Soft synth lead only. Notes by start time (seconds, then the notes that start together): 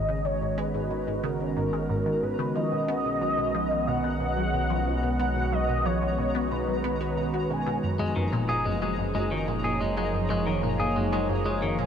Already playing: D#5
0.25 C#5
0.58 B4
1.24 A#4
2.23 B4
2.55 D#5
3.87 F#5
5.19 F#5
5.52 D#5
5.85 C#5
6.51 B4
7.50 G#5